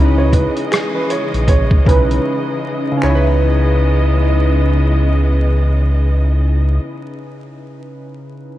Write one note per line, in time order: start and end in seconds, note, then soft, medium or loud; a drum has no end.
0.00 0.47 C#2 loud
0.00 1.24 C#3 medium
0.00 2.98 C#3 medium
0.00 2.99 E3 medium
0.00 2.99 G#3 medium
0.00 1.25 C#4 medium
0.00 1.26 D#4 medium
0.00 1.26 E4 medium
0.00 2.98 D#5 medium
0.05 1.30 B4 medium
0.18 0.33 C#5 medium
0.33 0.68 B4 medium
0.33 kick medium
0.33 closed hi-hat medium
0.57 closed hi-hat soft
0.72 0.92 G#4 medium
0.72 finger snap medium
0.72 cross-stick loud
0.72 closed hi-hat medium
0.95 1.08 B4 medium
1.10 1.45 C#5 medium
1.10 closed hi-hat medium
1.34 1.79 A#1 medium
1.34 closed hi-hat soft
1.48 1.83 C#5 medium
1.48 kick medium
1.48 closed hi-hat medium
1.71 kick loud
1.85 2.19 B1 medium
1.85 2.86 C#3 medium
1.85 2.86 C#4 medium
1.85 2.87 D#4 medium
1.85 2.98 B4 medium
1.85 kick loud
1.85 closed hi-hat medium
1.89 2.88 E4 medium
1.89 2.88 B4 medium
2.11 closed hi-hat soft
2.91 6.67 C#3 medium
2.97 6.73 C#4 medium
3.02 6.79 C#2 loud
3.02 6.78 C#3 medium
3.02 6.78 E3 medium
3.02 6.78 G#3 medium
3.02 6.78 B3 medium
3.02 6.79 D#4 medium
3.02 5.29 C#5 medium
3.02 6.78 D#5 medium
3.02 finger snap medium
3.09 6.85 E4 medium
3.15 6.91 B4 medium